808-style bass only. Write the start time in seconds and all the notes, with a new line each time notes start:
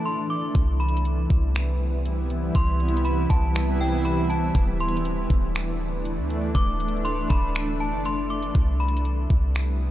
0.55 C2
1.30 C2
2.55 C2
3.30 C2
4.55 D1
5.30 D1
6.18 D2
6.55 D1
7.30 D1
7.93 F1
8.55 C2
9.30 C2